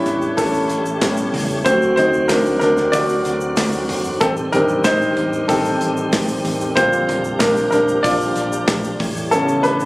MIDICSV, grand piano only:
0, 0, Header, 1, 2, 480
1, 0, Start_track
1, 0, Tempo, 638978
1, 1243, Time_signature, 4, 2, 24, 8
1, 7402, End_track
2, 0, Start_track
2, 0, Title_t, "Grand piano"
2, 0, Program_c, 0, 0
2, 0, Control_c, 0, 64, 127
2, 0, Note_on_c, 0, 55, 62
2, 0, Note_on_c, 0, 59, 54
2, 0, Note_on_c, 0, 61, 66
2, 0, Note_on_c, 0, 62, 77
2, 0, Note_on_c, 0, 64, 82
2, 0, Note_on_c, 0, 69, 88
2, 0, Note_on_c, 0, 71, 100
2, 0, Note_on_c, 0, 73, 109
2, 259, Note_off_c, 0, 64, 0
2, 279, Note_off_c, 0, 61, 0
2, 280, Note_off_c, 0, 69, 0
2, 280, Note_on_c, 0, 69, 89
2, 291, Note_on_c, 0, 61, 69
2, 296, Note_off_c, 0, 73, 0
2, 754, Note_off_c, 0, 55, 0
2, 757, Note_off_c, 0, 59, 0
2, 760, Note_off_c, 0, 61, 0
2, 765, Note_on_c, 0, 55, 54
2, 768, Note_on_c, 0, 59, 45
2, 772, Note_on_c, 0, 61, 61
2, 971, Note_off_c, 0, 69, 0
2, 980, Note_off_c, 0, 55, 0
2, 982, Note_off_c, 0, 59, 0
2, 984, Note_off_c, 0, 61, 0
2, 1236, Note_on_c, 0, 72, 94
2, 1243, Note_on_c, 0, 54, 55
2, 1248, Note_on_c, 0, 57, 50
2, 1251, Control_c, 0, 64, 0
2, 1254, Note_on_c, 0, 60, 64
2, 1255, Note_off_c, 0, 62, 0
2, 1255, Note_off_c, 0, 71, 0
2, 1255, Note_on_c, 0, 66, 69
2, 1382, Control_c, 0, 64, 127
2, 1461, Note_off_c, 0, 72, 0
2, 1472, Note_on_c, 0, 72, 91
2, 1473, Note_off_c, 0, 66, 0
2, 1493, Note_on_c, 0, 63, 73
2, 1562, Note_off_c, 0, 54, 0
2, 1565, Note_off_c, 0, 57, 0
2, 1568, Note_off_c, 0, 60, 0
2, 1711, Note_off_c, 0, 63, 0
2, 1712, Note_on_c, 0, 70, 85
2, 1725, Note_off_c, 0, 72, 0
2, 1737, Note_on_c, 0, 62, 72
2, 1938, Note_off_c, 0, 70, 0
2, 1949, Note_on_c, 0, 70, 92
2, 1954, Note_off_c, 0, 62, 0
2, 1975, Note_on_c, 0, 62, 69
2, 2179, Note_off_c, 0, 70, 0
2, 2193, Note_off_c, 0, 62, 0
2, 2193, Note_on_c, 0, 74, 110
2, 2216, Note_on_c, 0, 66, 80
2, 2888, Note_off_c, 0, 74, 0
2, 2899, Note_off_c, 0, 66, 0
2, 3159, Note_on_c, 0, 69, 95
2, 3172, Control_c, 0, 64, 0
2, 3176, Note_on_c, 0, 60, 74
2, 3214, Note_off_c, 0, 69, 0
2, 3229, Note_off_c, 0, 60, 0
2, 3313, Control_c, 0, 64, 127
2, 3399, Note_on_c, 0, 70, 99
2, 3405, Note_on_c, 0, 51, 60
2, 3411, Note_on_c, 0, 55, 56
2, 3417, Note_on_c, 0, 60, 65
2, 3419, Note_on_c, 0, 62, 73
2, 3635, Note_off_c, 0, 62, 0
2, 3637, Note_on_c, 0, 72, 107
2, 3648, Note_off_c, 0, 70, 0
2, 3655, Note_on_c, 0, 63, 87
2, 4094, Note_off_c, 0, 51, 0
2, 4097, Note_off_c, 0, 55, 0
2, 4099, Note_off_c, 0, 63, 0
2, 4100, Note_off_c, 0, 60, 0
2, 4118, Note_on_c, 0, 69, 82
2, 4126, Note_on_c, 0, 51, 50
2, 4127, Note_on_c, 0, 55, 49
2, 4131, Note_on_c, 0, 60, 70
2, 4135, Note_off_c, 0, 72, 0
2, 4340, Note_off_c, 0, 51, 0
2, 4341, Note_off_c, 0, 55, 0
2, 4811, Note_off_c, 0, 69, 0
2, 4819, Note_off_c, 0, 60, 0
2, 5075, Note_on_c, 0, 72, 93
2, 5077, Note_on_c, 0, 50, 55
2, 5082, Note_on_c, 0, 55, 54
2, 5086, Note_on_c, 0, 60, 62
2, 5089, Note_on_c, 0, 65, 66
2, 5093, Control_c, 0, 64, 0
2, 5226, Control_c, 0, 64, 127
2, 5529, Note_off_c, 0, 72, 0
2, 5536, Note_off_c, 0, 65, 0
2, 5553, Note_on_c, 0, 70, 85
2, 5565, Note_on_c, 0, 62, 69
2, 5777, Note_off_c, 0, 70, 0
2, 5787, Note_off_c, 0, 62, 0
2, 5788, Note_on_c, 0, 70, 83
2, 5803, Note_on_c, 0, 62, 66
2, 6026, Note_off_c, 0, 62, 0
2, 6031, Note_on_c, 0, 74, 104
2, 6043, Note_off_c, 0, 70, 0
2, 6046, Note_on_c, 0, 65, 73
2, 6727, Note_off_c, 0, 74, 0
2, 6730, Note_off_c, 0, 50, 0
2, 6732, Note_off_c, 0, 55, 0
2, 6734, Note_off_c, 0, 60, 0
2, 6734, Note_off_c, 0, 65, 0
2, 6771, Control_c, 0, 64, 0
2, 6906, Control_c, 0, 64, 127
2, 6996, Note_on_c, 0, 69, 97
2, 7001, Note_on_c, 0, 49, 56
2, 7006, Note_on_c, 0, 55, 50
2, 7008, Note_on_c, 0, 59, 59
2, 7011, Note_on_c, 0, 61, 72
2, 7230, Note_off_c, 0, 61, 0
2, 7234, Note_on_c, 0, 71, 97
2, 7246, Note_off_c, 0, 69, 0
2, 7248, Note_on_c, 0, 62, 79
2, 7321, Note_off_c, 0, 49, 0
2, 7323, Note_off_c, 0, 55, 0
2, 7324, Note_off_c, 0, 59, 0
2, 7402, Note_off_c, 0, 62, 0
2, 7402, Note_off_c, 0, 71, 0
2, 7402, End_track
0, 0, End_of_file